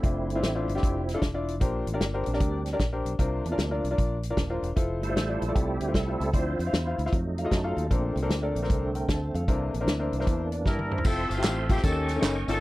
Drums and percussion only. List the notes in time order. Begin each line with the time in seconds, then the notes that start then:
0.04 kick, closed hi-hat
0.30 closed hi-hat
0.43 snare, closed hi-hat
0.69 closed hi-hat
0.77 snare
0.83 kick, closed hi-hat
1.09 snare, closed hi-hat
1.22 kick, snare, closed hi-hat
1.48 closed hi-hat
1.61 kick, closed hi-hat
1.87 closed hi-hat
2.01 snare, closed hi-hat
2.26 closed hi-hat
2.33 snare
2.40 kick, closed hi-hat
2.66 snare, closed hi-hat
2.79 kick, snare, closed hi-hat
3.06 closed hi-hat
3.19 kick, closed hi-hat
3.45 closed hi-hat
3.59 snare, closed hi-hat
3.84 closed hi-hat
3.98 kick, closed hi-hat
4.23 closed hi-hat
4.37 kick, snare, closed hi-hat
4.63 closed hi-hat
4.77 kick, closed hi-hat
5.03 closed hi-hat
5.17 snare, closed hi-hat
5.42 closed hi-hat
5.56 kick, closed hi-hat
5.80 closed hi-hat
5.94 kick, snare, closed hi-hat
6.21 closed hi-hat
6.34 kick, closed hi-hat
6.60 closed hi-hat
6.74 snare, closed hi-hat
6.99 closed hi-hat
7.06 snare
7.13 kick, closed hi-hat
7.38 closed hi-hat
7.51 kick, snare, closed hi-hat
7.78 closed hi-hat
7.91 kick, closed hi-hat
8.17 closed hi-hat
8.30 snare, closed hi-hat
8.56 closed hi-hat
8.64 snare
8.70 kick, closed hi-hat
8.95 closed hi-hat
9.09 kick, snare, closed hi-hat
9.35 closed hi-hat
9.48 kick, closed hi-hat
9.74 closed hi-hat
9.88 snare, closed hi-hat
10.13 closed hi-hat
10.21 snare
10.27 kick, closed hi-hat
10.52 closed hi-hat
10.66 kick, snare
10.79 high tom
10.91 mid tom
10.98 floor tom
11.05 kick, crash, tambourine
11.31 closed hi-hat, tambourine
11.44 snare, clap, closed hi-hat, tambourine
11.69 kick, closed hi-hat, tambourine
11.77 snare
11.83 kick, closed hi-hat, tambourine
12.08 snare, closed hi-hat, tambourine
12.22 snare, clap, closed hi-hat, tambourine
12.48 closed hi-hat, tambourine